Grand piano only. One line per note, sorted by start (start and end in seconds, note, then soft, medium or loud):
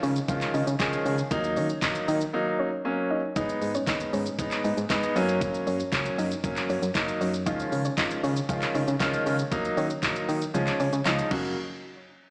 0.00 0.11 D#3 medium
0.00 0.11 F3 medium
0.00 0.12 G#3 medium
0.00 0.12 C#4 medium
0.00 0.12 F4 medium
0.28 0.63 D#3 medium
0.28 0.63 F3 medium
0.28 0.63 G#3 medium
0.28 0.63 C#4 medium
0.28 0.63 F4 loud
0.79 1.14 D#3 loud
0.79 1.14 F3 loud
0.79 1.14 G#3 loud
0.79 1.14 C#4 medium
0.79 1.14 G#4 loud
1.31 1.65 F#3 loud
1.31 1.65 A#3 loud
1.31 1.65 D#4 loud
1.82 2.16 F#3 medium
1.82 2.17 A#3 medium
1.82 2.17 D#4 loud
2.33 2.68 F#3 medium
2.33 2.68 A#3 medium
2.33 2.68 D#4 loud
2.85 3.19 F#3 medium
2.85 3.19 A#3 medium
2.85 3.19 C#4 loud
3.36 3.70 G#3 medium
3.36 3.71 B3 medium
3.36 3.71 D#4 loud
3.87 4.22 G#3 medium
3.87 4.22 B3 medium
3.87 4.22 D#4 medium
4.39 4.73 G#3 medium
4.39 4.73 B3 medium
4.39 4.73 D#4 medium
4.90 5.16 G#3 loud
4.90 5.16 B3 loud
4.90 5.16 D#4 loud
5.16 5.77 F#3 loud
5.16 5.77 A#3 loud
5.16 5.77 C#4 loud
5.92 6.27 F#3 medium
5.92 6.27 A#3 medium
5.92 6.27 C#4 loud
6.44 6.78 F#3 medium
6.44 6.78 A#3 medium
6.44 6.78 C#4 loud
6.95 7.29 F#3 medium
6.95 7.29 A#3 medium
6.95 7.30 D#4 loud
7.46 7.81 D#3 medium
7.46 7.81 F3 medium
7.46 7.81 G#3 medium
7.46 7.81 C#4 medium
7.46 7.81 F4 loud
7.97 8.32 D#3 medium
7.97 8.32 F3 medium
7.97 8.32 G#3 medium
7.97 8.32 C#4 medium
7.97 8.32 F4 medium
8.49 8.83 D#3 medium
8.49 8.83 F3 medium
8.49 8.83 G#3 medium
8.49 8.83 C#4 medium
8.49 8.83 F4 medium
9.00 9.34 D#3 loud
9.00 9.35 F3 loud
9.00 9.35 G#3 loud
9.00 9.35 C#4 loud
9.00 9.35 F4 loud
9.51 9.86 F#3 loud
9.51 9.86 A#3 loud
9.51 9.86 D#4 loud
10.03 10.37 F#3 medium
10.03 10.37 A#3 medium
10.03 10.37 D#4 loud
10.54 10.88 F3 medium
10.54 10.88 G#3 medium
10.54 10.89 C#4 loud
11.05 11.31 F3 medium
11.05 11.31 G#3 medium
11.05 11.31 D#4 loud
11.31 11.55 C#3 medium
11.31 11.55 F#3 medium
11.31 11.55 A#3 medium
11.31 11.55 F#4 loud